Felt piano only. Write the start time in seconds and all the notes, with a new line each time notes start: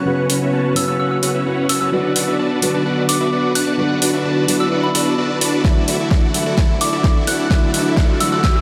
Already playing: C#3 F#3 B3 F#4
0.05 C#3 F#3 B3 F#4
0.75 C#3 F#3 B3 F#4
1.92 D3 F#3 B3 F#4
2.61 D3 F#3 B3 F#4
3.77 D3 F#3 B3 F#4
4.47 D3 F#3 B3 F#4
5.64 D3 F#3 A3 E4
6.33 D3 F#3 A3 E4
7.50 D3 F#3 A3 E4
8.19 D3 F#3 A3 E4